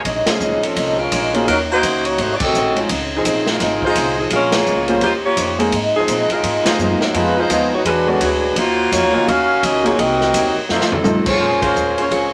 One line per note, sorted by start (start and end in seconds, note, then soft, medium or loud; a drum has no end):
0.05 0.25 A#1 medium
0.05 0.28 A#2 soft
0.05 0.28 G#3 medium
0.05 0.29 C#4 medium
0.05 0.29 D#4 medium
0.05 kick soft
0.05 ride medium
0.26 0.61 F3 medium
0.26 0.61 C4 medium
0.26 0.61 C#4 medium
0.26 0.61 G#4 medium
0.26 muted upright bass stroke soft
0.26 snare medium
0.26 ride medium
0.40 0.61 C#2 medium
0.40 0.63 A#2 medium
0.40 0.64 G#3 medium
0.40 0.64 C#4 medium
0.40 0.64 D#4 medium
0.40 hi-hat pedal medium
0.63 0.98 F3 medium
0.63 0.98 C4 medium
0.63 0.97 C#4 medium
0.63 0.98 A4 medium
0.63 muted upright bass stroke soft
0.63 ride soft
0.75 1.10 C2 medium
0.75 0.99 A#2 soft
0.75 1.00 G#3 soft
0.75 1.00 C#4 soft
0.75 1.00 D#4 medium
0.75 kick soft
0.75 ride medium
0.98 1.34 G#3 medium
0.98 1.34 C#4 medium
0.98 1.34 F4 medium
0.98 1.34 A#4 medium
1.11 1.46 A#1 medium
1.11 1.35 A#2 medium
1.11 1.35 G#3 medium
1.11 1.35 C#4 medium
1.11 1.35 D#4 medium
1.11 kick soft
1.11 hi-hat pedal medium
1.11 ride medium
1.33 1.47 F3 medium
1.33 1.45 F#3 medium
1.33 1.46 A#3 medium
1.33 1.47 C4 medium
1.33 1.46 C#4 medium
1.33 1.47 C#4 medium
1.33 1.46 D#4 medium
1.33 1.46 F4 medium
1.33 1.47 G#4 medium
1.33 ride soft
1.46 1.81 D#2 medium
1.46 1.70 D#3 soft
1.46 1.58 F#3 medium
1.46 1.70 A#3 soft
1.46 1.71 C#4 soft
1.46 1.58 C#4 medium
1.46 1.58 D#4 medium
1.46 1.71 F#4 soft
1.46 1.58 A#4 loud
1.46 kick soft
1.46 ride medium
1.71 2.03 A#3 medium
1.71 2.03 D#4 medium
1.71 2.03 F#4 medium
1.71 2.03 C5 medium
1.81 2.17 C#2 medium
1.81 2.05 D#3 medium
1.81 2.05 A#3 medium
1.81 2.06 C#4 medium
1.81 2.06 F#4 medium
1.81 kick soft
1.81 hi-hat pedal medium
1.81 ride medium
2.05 2.19 A#3 medium
2.05 2.18 D#4 medium
2.05 2.19 F#4 medium
2.05 2.19 C#5 medium
2.05 ride soft
2.18 2.38 G#1 medium
2.18 2.41 G#2 soft
2.18 2.42 F#3 soft
2.18 2.42 A3 soft
2.18 2.32 A3 medium
2.18 2.43 C4 medium
2.18 2.32 D#4 medium
2.18 2.32 F#4 medium
2.18 2.32 C5 loud
2.18 kick soft
2.18 ride medium
2.35 2.42 D5 medium
2.40 2.76 C4 medium
2.40 2.77 F#4 medium
2.40 2.76 A4 medium
2.40 2.76 D#5 loud
2.40 muted upright bass stroke soft
2.40 kick medium
2.40 crash medium
2.53 2.88 A1 medium
2.53 2.77 G#2 medium
2.53 2.77 F#3 medium
2.53 2.77 A3 medium
2.53 2.78 C4 medium
2.53 hi-hat pedal medium
2.75 2.87 G#3 medium
2.75 2.88 C4 soft
2.75 2.87 C#4 soft
2.75 2.88 D#4 medium
2.75 2.88 F4 medium
2.75 ride soft
2.87 3.23 C#2 medium
2.87 3.11 C#3 medium
2.87 3.12 F3 medium
2.87 3.12 C4 medium
2.87 3.13 D#4 medium
2.87 kick soft
2.87 ride medium
3.15 3.47 F3 medium
3.15 3.46 C4 medium
3.15 3.46 D#4 medium
3.15 3.47 G#4 medium
3.25 3.59 A#1 medium
3.25 3.48 C#3 medium
3.25 3.48 F3 medium
3.25 3.48 C4 medium
3.25 3.48 D#4 medium
3.25 kick soft
3.25 hi-hat pedal medium
3.25 ride medium
3.46 3.83 G#3 medium
3.46 3.83 D#4 medium
3.46 3.83 F4 medium
3.46 3.83 A#4 medium
3.46 snare medium
3.60 3.94 G#1 medium
3.60 3.83 C#3 soft
3.60 3.83 F3 soft
3.60 3.84 C4 medium
3.60 3.84 D#4 medium
3.60 kick soft
3.60 snare soft
3.60 ride medium
3.82 4.17 G#3 medium
3.82 4.17 D#4 medium
3.82 4.17 F4 medium
3.82 4.17 C5 loud
3.82 kick medium
3.95 4.30 C2 medium
3.95 4.19 C#3 medium
3.95 4.19 F3 medium
3.95 4.19 C4 medium
3.95 4.20 D#4 medium
3.95 kick soft
3.95 hi-hat pedal medium
3.95 ride medium
4.19 4.31 F3 medium
4.19 4.30 C4 medium
4.19 4.30 D#4 medium
4.19 4.31 G#4 medium
4.30 4.65 A#1 medium
4.30 4.54 A#2 soft
4.30 4.54 G#3 soft
4.30 4.52 G#3 medium
4.30 4.55 C#4 soft
4.30 4.52 C#4 medium
4.30 4.52 F4 medium
4.30 4.55 F4 medium
4.30 4.52 A#4 loud
4.30 kick soft
4.30 ride medium
4.52 4.89 A#3 medium
4.52 4.88 F4 medium
4.52 4.89 G#4 medium
4.52 4.89 C#5 loud
4.52 snare medium
4.52 ride medium
4.66 5.00 C#2 medium
4.66 4.89 A#2 medium
4.66 4.90 G#3 medium
4.66 4.90 C#4 medium
4.66 4.90 F4 medium
4.66 hi-hat pedal medium
4.87 5.00 G3 medium
4.87 5.01 G#3 medium
4.87 5.00 A#3 medium
4.87 5.00 C4 medium
4.87 5.01 C#4 medium
4.87 5.01 F4 medium
4.87 5.01 C5 medium
4.87 ride soft
5.01 5.36 D#2 medium
5.01 5.25 D#3 soft
5.01 5.13 A#3 medium
5.01 5.26 C#4 soft
5.01 5.13 F4 medium
5.01 5.13 G4 medium
5.01 5.26 G4 soft
5.01 5.13 C5 medium
5.01 5.26 C5 medium
5.01 kick soft
5.01 ride medium
5.25 5.58 A#3 medium
5.25 5.57 F4 medium
5.25 5.58 G4 medium
5.25 5.57 C#5 medium
5.36 5.71 F2 medium
5.36 5.60 D#3 medium
5.36 5.61 C#4 medium
5.36 5.61 G4 medium
5.36 5.61 C5 medium
5.36 kick soft
5.36 hi-hat pedal medium
5.36 ride medium
5.58 5.70 G#3 medium
5.58 5.71 A#3 medium
5.58 5.71 C4 medium
5.58 5.71 D#4 medium
5.58 5.71 G#4 medium
5.58 ride soft
5.72 6.07 G#2 medium
5.72 5.96 G#2 medium
5.72 5.96 F3 soft
5.72 5.97 C4 medium
5.72 5.97 D#4 medium
5.72 kick soft
5.72 ride medium
5.96 6.29 F3 medium
5.96 6.29 C4 medium
5.96 6.29 D#4 medium
5.96 6.28 G#4 medium
6.07 6.31 G#2 medium
6.07 6.28 A#2 medium
6.07 6.31 F3 medium
6.07 6.32 C4 medium
6.07 6.32 D#4 medium
6.07 kick soft
6.07 hi-hat pedal medium
6.07 ride medium
6.30 6.64 G#3 medium
6.30 6.64 D#4 medium
6.30 6.64 F4 medium
6.30 6.64 A#4 medium
6.30 muted upright bass stroke soft
6.30 ride soft
6.42 6.66 G#2 soft
6.42 6.64 G#2 medium
6.42 6.67 F3 soft
6.42 6.67 C4 soft
6.42 6.68 D#4 soft
6.42 kick soft
6.42 ride medium
6.65 6.99 G#3 medium
6.65 6.99 D#4 medium
6.65 6.99 F4 medium
6.65 6.99 C5 medium
6.65 muted upright bass stroke soft
6.65 snare medium
6.65 ride medium
6.78 6.99 F#2 medium
6.78 7.02 G#2 medium
6.78 7.03 F3 medium
6.78 6.98 G#3 soft
6.78 6.99 A#3 soft
6.78 6.99 C4 soft
6.78 7.03 C4 medium
6.78 6.99 D#4 soft
6.78 7.03 D#4 medium
6.78 6.99 F4 medium
6.78 hi-hat pedal medium
7.01 7.14 F#3 medium
7.01 7.14 C4 medium
7.01 7.14 D#4 medium
7.01 7.14 A#4 medium
7.01 muted upright bass stroke soft
7.01 snare medium
7.14 7.48 F2 medium
7.14 7.34 F3 medium
7.14 7.38 F3 soft
7.14 7.34 G#3 medium
7.14 7.37 G#3 medium
7.14 7.34 B3 medium
7.14 7.38 B3 soft
7.14 7.34 D#4 medium
7.14 7.38 D#4 soft
7.14 7.37 D#4 medium
7.14 7.35 F4 medium
7.14 7.38 F4 medium
7.14 7.39 G#4 medium
7.14 7.38 B4 loud
7.14 kick soft
7.14 ride medium
7.39 7.71 G#3 medium
7.39 7.71 D#4 medium
7.39 7.71 F4 medium
7.39 7.71 C5 medium
7.48 7.84 D#2 medium
7.48 7.69 F3 medium
7.48 7.73 F3 medium
7.48 7.69 G#3 medium
7.48 7.69 B3 medium
7.48 7.73 B3 medium
7.48 7.70 D#4 medium
7.48 7.73 D#4 medium
7.48 7.70 F4 medium
7.48 7.74 G#4 medium
7.48 kick soft
7.48 hi-hat pedal medium
7.48 ride medium
7.73 7.82 B3 medium
7.73 7.82 D#4 medium
7.73 7.82 F#4 medium
7.73 7.82 C#5 medium
7.83 8.19 E2 medium
7.83 8.08 E3 soft
7.83 8.08 G#3 medium
7.83 8.09 D4 soft
7.83 8.08 D4 medium
7.83 8.08 F#4 medium
7.83 8.09 G#4 soft
7.83 7.86 A#4 medium
7.83 8.08 B4 medium
7.83 8.09 C#5 soft
7.83 kick soft
7.83 ride medium
8.06 8.19 D3 medium
8.06 8.19 G#3 medium
8.06 8.19 B3 medium
8.06 8.21 B3 medium
8.06 8.20 C#4 medium
8.06 8.20 F#4 medium
8.06 8.21 F#4 medium
8.06 8.21 G#4 medium
8.06 8.21 D5 medium
8.20 8.55 D2 medium
8.20 8.44 E3 medium
8.20 8.55 G#3 medium
8.20 8.44 D4 medium
8.20 8.55 D4 medium
8.20 8.55 F#4 medium
8.20 8.45 G#4 medium
8.20 8.55 B4 medium
8.20 8.45 C#5 medium
8.20 kick soft
8.20 hi-hat pedal medium
8.20 ride medium
8.56 8.90 D#2 medium
8.56 8.80 D#3 soft
8.56 8.80 F#3 soft
8.56 8.91 A#3 loud
8.56 8.80 C#4 soft
8.56 8.91 F4 medium
8.56 8.81 F4 medium
8.56 8.91 F#4 medium
8.56 8.92 C5 loud
8.56 kick soft
8.56 ride medium
8.91 9.04 F2 medium
8.91 9.15 D#3 medium
8.91 9.15 F#3 medium
8.91 9.27 A#3 medium
8.91 9.15 C#4 medium
8.91 9.27 F4 medium
8.91 9.16 F4 medium
8.91 9.26 F#4 medium
8.91 9.27 C#5 loud
8.91 kick soft
8.91 hi-hat pedal medium
8.91 ride medium
9.04 9.14 D#2 medium
9.12 9.26 C#2 medium
9.12 9.25 F#3 medium
9.12 9.25 A#3 medium
9.12 9.25 C#4 medium
9.12 9.26 D#4 medium
9.12 9.26 F4 medium
9.27 9.61 D#2 medium
9.27 9.50 D#3 soft
9.27 9.51 F#3 soft
9.27 9.63 C#4 loud
9.27 9.51 C#4 medium
9.27 9.51 F4 medium
9.27 9.63 F#4 medium
9.27 9.63 A#4 medium
9.27 9.63 F5 loud
9.27 kick soft
9.27 ride medium
9.62 9.97 C#2 medium
9.62 9.86 D#3 medium
9.62 9.86 F#3 medium
9.62 9.86 C#4 medium
9.62 9.85 C#4 medium
9.62 9.87 F4 medium
9.62 9.85 F#4 medium
9.62 9.85 A#4 medium
9.62 9.85 D#5 loud
9.62 kick soft
9.62 hi-hat pedal medium
9.62 ride medium
9.83 9.96 F#3 medium
9.83 9.96 A#3 medium
9.83 9.99 A#3 medium
9.83 9.96 C4 medium
9.83 9.97 D#4 medium
9.83 9.99 F4 medium
9.83 9.99 F#4 medium
9.83 9.97 G#4 medium
9.83 9.99 C#5 medium
9.83 ride medium
9.98 10.32 C2 medium
9.98 10.21 C3 soft
9.98 10.22 F#3 soft
9.98 10.22 A#3 medium
9.98 10.56 C4 loud
9.98 10.22 D#4 medium
9.98 10.56 F#4 loud
9.98 10.56 A#4 loud
9.98 10.56 D#5 loud
9.98 kick soft
9.98 ride medium
10.21 snare soft
10.34 10.54 D#2 medium
10.34 10.57 C3 medium
10.34 10.57 F#3 medium
10.34 10.58 A#3 medium
10.34 10.58 D#4 medium
10.34 kick soft
10.34 hi-hat pedal medium
10.34 ride medium
10.56 muted upright bass stroke soft
10.69 11.03 F2 medium
10.69 10.92 F2 soft
10.69 10.93 D#3 soft
10.69 10.93 A3 soft
10.69 10.91 A3 medium
10.69 10.93 C4 medium
10.69 10.91 D#4 medium
10.69 10.90 F4 medium
10.69 10.90 C5 medium
10.69 snare soft
10.81 snare medium
10.92 11.28 F3 medium
10.92 11.28 C4 medium
10.92 11.28 D#4 medium
10.92 11.27 A4 medium
10.92 floor tom medium
11.04 11.28 F2 medium
11.04 11.39 A2 medium
11.04 11.28 D#3 medium
11.04 11.39 F3 medium
11.04 11.40 A3 medium
11.04 11.29 A3 medium
11.04 11.40 C4 medium
11.04 11.29 C4 medium
11.04 11.40 D#4 medium
11.04 11.40 F4 medium
11.04 hi-hat pedal medium
11.04 high tom medium
11.26 11.60 G#3 medium
11.26 11.60 F4 medium
11.26 11.60 C5 medium
11.26 11.60 C#5 loud
11.26 kick medium
11.26 crash medium
11.39 11.74 A#2 medium
11.39 12.33 C#4 medium
11.39 12.33 G#4 medium
11.39 12.33 A#4 medium
11.39 12.33 C5 medium
11.62 11.95 G#3 medium
11.62 11.95 C#4 medium
11.62 11.95 F4 medium
11.62 11.95 C5 medium
11.62 kick medium
11.62 ride medium
11.75 12.10 D#2 medium
11.75 hi-hat pedal medium
11.98 12.10 G#3 medium
11.98 12.10 C#4 medium
11.98 12.10 F4 medium
11.98 12.10 C5 medium
11.98 ride soft
12.11 12.33 C#2 medium
12.11 12.31 G#3 medium
12.11 12.32 C4 medium
12.11 12.32 F4 medium
12.11 12.31 C#5 medium
12.11 kick soft
12.11 ride medium